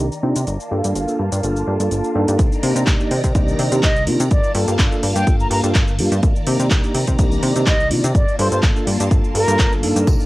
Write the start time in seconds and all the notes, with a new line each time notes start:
Already playing: D#3 D5 A#5
0.12 shaker
0.23 C3 A#3 D4 D#4 F4
0.36 C3, closed hi-hat, shaker
0.47 G1 A#3 F4 A5, closed hi-hat, shaker
0.60 shaker
0.71 G2 A#3 D4 F4 A4
0.84 G2, closed hi-hat, shaker
0.95 G1, closed hi-hat, shaker
1.08 A#3 D4 F4 A4, shaker
1.19 G2
1.32 G2, closed hi-hat, shaker
1.43 G1 A#3 D4 F4 A4, closed hi-hat, shaker
1.56 shaker
1.67 G2
1.80 G2 A#3 D4 F4 A4, closed hi-hat, shaker
1.91 G1, closed hi-hat, shaker
2.04 shaker
2.15 G2 A#3 D4 D#4 A4
2.28 G2, closed hi-hat, shaker
2.39 C2 D#3 D5 A#5, kick, closed hi-hat, shaker
2.52 shaker
2.63 C3 A#3 D4 D#4 G4, open hi-hat
2.76 C3, closed hi-hat, shaker
2.87 C2, kick, clap, closed hi-hat, shaker
3.00 A#3 D4 D#4 G4, shaker
3.11 C3, open hi-hat
3.24 C3, kick, closed hi-hat, shaker
3.35 C2 A#3 D4 D#4 G4, kick, closed hi-hat, shaker
3.48 shaker
3.59 C3, open hi-hat
3.72 C3 A#3 D4 D#4 G4, closed hi-hat, shaker
3.83 C2 D#5, kick, clap, closed hi-hat, shaker
3.96 shaker
4.07 C3 A#3 D4 D#4 F4, open hi-hat
4.20 C3, closed hi-hat, shaker
4.31 G1 A#3 F4 D5 A5, kick, closed hi-hat, shaker
4.44 shaker
4.55 G2 A#3 D4 F4 A4, open hi-hat
4.68 G2, closed hi-hat, shaker
4.79 G1, kick, clap, closed hi-hat, shaker
4.92 A#3 D4 F4 A4, shaker
5.03 G2, open hi-hat
5.16 G2 G5, closed hi-hat, shaker
5.27 G1 A#3 D4 F4 A4, kick, closed hi-hat, shaker
5.40 A#5, shaker
5.50 G2 A#5, open hi-hat
5.64 G2 A#3 D4 F4 A4, closed hi-hat, shaker
5.75 G1, kick, clap, closed hi-hat, shaker
5.88 shaker
5.99 G2 A#3 D4 F4 G4, open hi-hat
6.12 G2, closed hi-hat, shaker
6.23 C2 D#3 D5 A#5, kick, closed hi-hat, shaker
6.36 shaker
6.47 C3 A#3 D4 D#4 G4, open hi-hat
6.60 C3, closed hi-hat, shaker
6.71 C2, kick, clap, closed hi-hat, shaker
6.84 A#3 D4 D#4 G4, shaker
6.95 C3, open hi-hat
7.07 C3, kick, closed hi-hat, shaker
7.19 C2 A#3 D4 D#4 G4, kick, closed hi-hat, shaker
7.32 shaker
7.43 C3, open hi-hat
7.56 C3 A#3 D4 D#4 G4, closed hi-hat, shaker
7.67 C2 D#5, kick, clap, closed hi-hat, shaker
7.80 shaker
7.90 C3 A#3 D4 D#4 F4, open hi-hat
8.04 C3, closed hi-hat, shaker
8.15 G1 A#3 F4 D5 A5, kick, closed hi-hat, shaker
8.28 shaker
8.39 G2 A#3 D4 F4 A4 C5, open hi-hat
8.52 G2 C5, closed hi-hat, shaker
8.63 G1, kick, clap, closed hi-hat, shaker
8.76 A#3 D4 F4 A4, shaker
8.87 G2, open hi-hat
9.00 G2, closed hi-hat, shaker
9.11 G1 A#3 D4 F4 A4, kick, closed hi-hat, shaker
9.24 shaker
9.35 G2 A#4, open hi-hat
9.48 G2 A#3 D4 F4 A4, closed hi-hat, shaker
9.59 G1, kick, clap, closed hi-hat, shaker
9.72 shaker
9.83 G2 A#3 D4 D#4 A4, open hi-hat
9.96 G2, closed hi-hat, shaker
10.07 C2 D#3 D5 A#5, kick, closed hi-hat, tambourine, shaker
10.19 tambourine, shaker